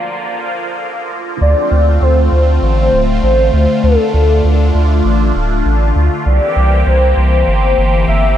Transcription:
Already playing: D2 D3 F3 A#3 F4 D5
0.20 A1
0.50 D1
0.81 A1
1.11 D2
1.41 D2 D3 A3 C4 F4 D5
1.71 D2
2.02 D2 C5
2.32 D2
2.62 A1 C5
2.93 D1
3.23 A1 C5
3.53 D2
3.84 D2 D4 A4
4.14 D2
4.44 D2
4.75 D2
5.05 A1
5.35 D1
5.66 A1
5.96 D2
6.26 C2 E3 A#3 C4 G4 D5
6.56 C2
6.87 C2 C5
7.17 C2
7.47 G1 C5
7.78 G1
8.08 G1 E5

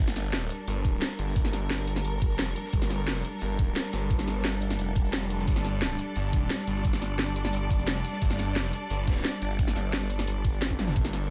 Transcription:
0.00 G1 G3 D4 A4 A#4
0.08 snare
0.16 snare, closed hi-hat
0.33 snare, closed hi-hat
0.50 closed hi-hat
0.67 G1, closed hi-hat
0.85 kick, closed hi-hat
1.02 snare, closed hi-hat, open hi-hat
1.10 closed hi-hat
1.19 G1, closed hi-hat
1.28 closed hi-hat
1.36 kick, closed hi-hat
1.44 snare
1.53 G1, snare, closed hi-hat
1.70 snare, closed hi-hat
1.88 closed hi-hat
1.96 snare
2.04 G1, closed hi-hat
2.22 kick, closed hi-hat
2.31 closed hi-hat
2.38 F1, snare, closed hi-hat
2.56 closed hi-hat
2.65 snare
2.73 G1, kick, closed hi-hat
2.82 snare
2.90 snare, closed hi-hat
3.07 snare, closed hi-hat
3.25 closed hi-hat
3.41 G1, closed hi-hat
3.59 kick, closed hi-hat
3.76 snare, closed hi-hat, open hi-hat
3.85 closed hi-hat
3.93 G1, snare, closed hi-hat
4.10 kick, closed hi-hat
4.19 snare
4.28 G1, snare, closed hi-hat
4.44 snare, closed hi-hat
4.62 closed hi-hat
4.70 snare
4.79 F1, closed hi-hat
4.95 kick, closed hi-hat
5.05 closed hi-hat
5.13 snare, closed hi-hat
5.30 closed hi-hat
5.39 snare
5.47 G1 D5, kick, closed hi-hat
5.56 snare
5.64 snare, closed hi-hat
5.81 snare, closed hi-hat
5.99 closed hi-hat
6.16 G1, closed hi-hat
6.33 kick, closed hi-hat
6.50 snare, closed hi-hat, open hi-hat
6.59 closed hi-hat
6.67 G1, closed hi-hat
6.76 closed hi-hat
6.85 kick, closed hi-hat
6.93 snare
7.02 G1, snare, closed hi-hat
7.18 snare, closed hi-hat
7.36 closed hi-hat
7.45 snare
7.53 G1, closed hi-hat
7.70 kick, closed hi-hat
7.79 closed hi-hat
7.87 F1, snare, closed hi-hat
8.05 closed hi-hat
8.13 snare
8.21 G1, kick, closed hi-hat
8.30 snare
8.38 snare, closed hi-hat
8.56 snare, closed hi-hat
8.73 closed hi-hat
8.90 G1, closed hi-hat
9.07 kick, snare, closed hi-hat
9.12 snare, closed hi-hat
9.16 snare, closed hi-hat
9.20 snare, closed hi-hat
9.24 snare, closed hi-hat, open hi-hat
9.33 closed hi-hat
9.42 G1, closed hi-hat
9.50 closed hi-hat
9.59 kick, closed hi-hat
9.68 snare
9.76 G1, snare, closed hi-hat
9.93 snare, closed hi-hat
10.10 closed hi-hat
10.19 snare
10.27 G1, closed hi-hat
10.45 kick, closed hi-hat
10.53 closed hi-hat
10.61 snare, closed hi-hat
10.70 kick, high tom
10.79 snare, closed hi-hat, mid tom
10.87 snare, closed hi-hat, mid tom
10.96 G1 A#4, kick, closed hi-hat
11.05 snare
11.13 snare, closed hi-hat

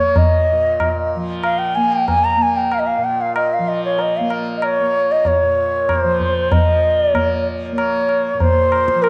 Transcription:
Already playing: A#2 F3 A#3 C#5
0.16 D#5, tabla tin, tabla ge
0.52 A#2
0.80 tabla na, tabla ge
1.15 F3
1.44 F5, tabla na
1.59 G5
1.75 A#3 G#5
1.92 G5
2.08 G#5, tabla tin, tabla ge
2.24 A#5
2.37 A#3
2.42 G#5
2.57 G5
2.72 F5, tabla na
2.79 D#5
2.87 F5
2.98 A#2
3.04 G5
3.21 F5
3.36 D#5, tabla na
3.53 F5
3.59 F3
3.68 D#5
3.85 C#5
3.99 D#5, tabla tin
4.17 A#3 F5
4.30 tabla na
4.57 D#5
4.62 C#5, tabla na
4.81 A#3
5.11 D#5
5.25 C#5, tabla tin, tabla ge
5.42 A#2
5.89 tabla na, tabla ge
5.98 C5
6.04 F3
6.20 tabla ge
6.52 F3 D#5, tabla tin, tabla ge
7.02 D5
7.14 A#3 C#5, tabla na, tabla ge
7.72 A#3
7.77 C#5, tabla na
8.09 tabla na
8.34 A#2
8.40 C5, tabla tin, tabla ge
8.72 tabla na
8.88 tabla ke
8.94 F3
9.03 A#4, tabla na

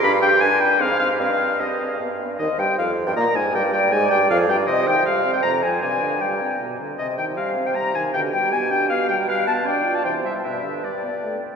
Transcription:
0.03 G2 D4 G4 B5
0.22 D4 G5
0.41 G2 D4 B4 G#5
0.60 D4 G5
0.79 G#2 C4 C5 F5
0.99 C4 F5
1.19 G2 C4 D#5 F5
1.40 C4
1.60 G2 C4 D#5
1.80 C4
2.00 G2 B3
2.21 B3
2.39 D#2 D#3 C5 D#5
2.58 G2 G3 G5
2.78 F2 F3 F5
3.07 G2 G3 G5
3.16 A#2 A#3 D#5 A#5
3.35 G#2 G#3 G#5
3.54 G2 G3 D5 G5
3.73 G2 G3 G5
3.92 G#2 G#3 D5 G#5
4.11 G2 G3 G5
4.30 F2 F3 F5
4.48 G2 G3 G5
4.67 C3 C5 D#5
4.87 D#3 G5
5.06 G3 F5
5.25 C4
5.33 G5
5.43 F2 C3 A#5
5.62 F3 G#5
5.81 G2 C3 D5 G#5
6.02 D3
6.21 G3 G5
6.41 C4
6.60 B2
6.80 D3
6.99 C3 D#5
7.18 D#3 G5
7.37 G3 C5 F5
7.57 C4
7.66 G5
7.75 G3 A#5
7.95 D#3 G#5
8.14 B2 D3 G4 G5
8.33 G3 G5
8.52 B3 G#5
8.71 D4 G5
8.90 B3 F5
9.09 G3 G5
9.27 G3 B4 F5
9.47 B3 A5
9.66 D4 D5 G5
9.85 F4
9.95 A5
10.04 C3 E3 C5 G5
10.24 G3 E5
10.44 G2 B2 B4 E5
10.64 D3
10.84 G3 D5
11.03 B3
11.23 A3

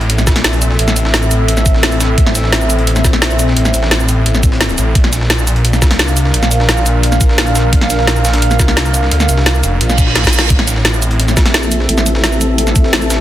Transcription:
Already playing: A1 C4 A4 E5, sub drop
0.01 closed hi-hat
0.10 closed hi-hat
0.18 snare, closed hi-hat, shaker
0.27 A#1, kick, snare, closed hi-hat, shaker
0.36 snare, closed hi-hat
0.44 snare, closed hi-hat
0.53 closed hi-hat, shaker
0.62 closed hi-hat, shaker
0.70 snare
0.79 A1, closed hi-hat
0.88 snare, shaker
0.96 closed hi-hat, shaker
1.05 snare
1.14 snare, closed hi-hat
1.22 shaker
1.31 closed hi-hat, shaker
1.48 closed hi-hat
1.57 snare, shaker
1.66 A1, kick, closed hi-hat, shaker
1.74 snare
1.83 snare, closed hi-hat
1.92 closed hi-hat, shaker
2.00 snare, closed hi-hat, shaker
2.18 A1, kick, closed hi-hat
2.26 snare
2.35 snare, closed hi-hat, shaker
2.44 snare
2.52 snare, closed hi-hat
2.61 shaker
2.70 closed hi-hat, shaker
2.79 closed hi-hat
2.87 closed hi-hat
2.96 snare, closed hi-hat, shaker
3.04 A#1, kick, snare, closed hi-hat, shaker
3.13 snare, closed hi-hat
3.22 snare, closed hi-hat
3.31 closed hi-hat, shaker
3.39 closed hi-hat, shaker
3.48 snare
3.57 A1, closed hi-hat
3.65 snare, shaker
3.74 A1, closed hi-hat, shaker
3.83 snare
3.91 snare, closed hi-hat
4.00 shaker
4.09 closed hi-hat, shaker
4.26 A1, closed hi-hat
4.35 snare, shaker
4.43 A1, kick, closed hi-hat, shaker
4.52 snare
4.61 snare, closed hi-hat
4.69 closed hi-hat, shaker
4.78 A1, closed hi-hat, shaker
4.95 A#1 D4 A#4 F5, kick, closed hi-hat
5.04 snare
5.13 snare, closed hi-hat, shaker
5.21 snare
5.30 snare, closed hi-hat
5.39 shaker
5.47 closed hi-hat, shaker
5.56 closed hi-hat
5.65 closed hi-hat
5.73 snare, closed hi-hat, shaker
5.82 C2, kick, snare, closed hi-hat, shaker
5.91 snare, closed hi-hat
5.99 snare, closed hi-hat
6.08 closed hi-hat, shaker
6.17 closed hi-hat, shaker
6.25 snare
6.34 A#1, closed hi-hat
6.43 snare, shaker
6.51 closed hi-hat, shaker
6.60 snare
6.69 snare, closed hi-hat
6.77 shaker
6.86 closed hi-hat, shaker
7.03 closed hi-hat
7.12 snare, shaker
7.21 A#1, kick, closed hi-hat, shaker
7.29 snare
7.38 snare, closed hi-hat
7.47 closed hi-hat, shaker
7.55 snare, closed hi-hat, shaker
7.73 A#1, kick, closed hi-hat
7.81 snare
7.90 snare, closed hi-hat, shaker
7.99 snare
8.07 snare, closed hi-hat
8.16 shaker
8.25 snare, closed hi-hat, shaker
8.33 snare, closed hi-hat
8.42 closed hi-hat
8.51 snare, closed hi-hat, shaker
8.59 C2, kick, snare, closed hi-hat, shaker
8.68 snare, closed hi-hat
8.77 snare, closed hi-hat
8.85 closed hi-hat, shaker
8.94 closed hi-hat, shaker
9.03 snare
9.11 D2, closed hi-hat
9.20 snare, shaker
9.29 C2, closed hi-hat, shaker
9.37 snare
9.46 snare, closed hi-hat
9.55 shaker
9.63 F1, closed hi-hat, shaker
9.81 A#1, closed hi-hat, reverse cymbal
9.89 snare, shaker
9.98 kick, closed hi-hat, shaker
10.07 snare
10.15 snare, closed hi-hat
10.24 kick, snare, closed hi-hat, shaker
10.33 A#1, closed hi-hat, shaker
10.39 snare
10.50 A1 C4 A4 E5, kick, closed hi-hat
10.59 snare
10.68 snare, closed hi-hat, shaker
10.76 snare
10.85 snare, closed hi-hat
10.94 shaker
11.02 closed hi-hat, shaker
11.11 closed hi-hat
11.20 closed hi-hat
11.28 snare, closed hi-hat, shaker
11.37 A#1, kick, snare, closed hi-hat, shaker
11.46 snare, closed hi-hat
11.54 snare, closed hi-hat
11.63 closed hi-hat, shaker
11.72 closed hi-hat, shaker
11.80 snare
11.89 A1, closed hi-hat
11.98 snare, shaker
12.06 closed hi-hat, shaker
12.15 snare
12.24 snare, closed hi-hat
12.32 shaker
12.41 closed hi-hat, shaker
12.58 closed hi-hat
12.67 snare, shaker
12.76 A1, kick, closed hi-hat, shaker
12.84 snare
12.93 snare, closed hi-hat
13.02 closed hi-hat, shaker
13.10 snare, closed hi-hat, shaker

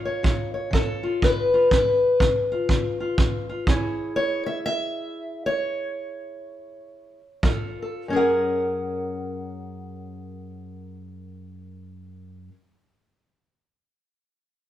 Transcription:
Already playing: C#3 F4
0.05 C#5
0.23 C#3, kick
0.54 C#5
0.71 C#3 A4, kick
1.03 F4
1.22 C#3 B4, kick
1.54 F4
1.71 C#3 B4, kick
2.20 C#3, kick
2.52 F4
2.69 C#3, kick
3.00 F4
3.18 C#3, kick
3.49 F4
3.67 F#2 E4 G#4 C#5, kick
4.16 C#5
4.46 E5
4.66 E5
5.46 C#5
7.43 G3 F4 A4, kick
7.82 A4
8.08 F#2 C#4
8.13 G#4 A#4 F#5

